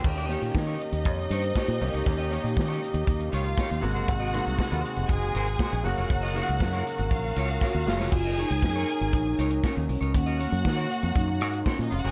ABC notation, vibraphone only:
X:1
M:4/4
L:1/16
Q:1/4=119
K:Ebdor
V:1 name="Vibraphone"
=g4 e4 d2 c4 B2 | d6 z8 z2 | z16 | z12 G4 |
F2 E6 E4 D2 D2 | D2 B,6 E4 D3 z |]